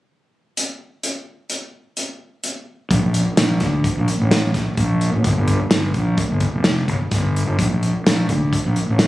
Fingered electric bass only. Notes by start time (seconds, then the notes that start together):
2.91 A#1
3.03 A#1
3.38 A#1
3.61 D2
3.98 A#1
4.20 A1
4.55 A#1
4.78 A#1
5.14 A1
5.25 G1
5.37 G1
5.72 G1
5.95 A#1
6.30 G1
6.54 F1
6.89 G1
7.12 G1
7.46 G1
7.59 A#1
7.71 A#1
8.06 A#1
8.30 D2
8.66 A#1
8.89 A1